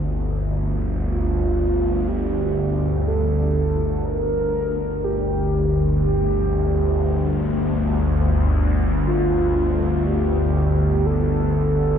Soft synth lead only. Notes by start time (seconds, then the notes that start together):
1.08 F4
2.08 G4
3.08 A4
4.05 A#4
5.04 G4
6.02 G4
9.04 F4
10.06 G4
11.06 A4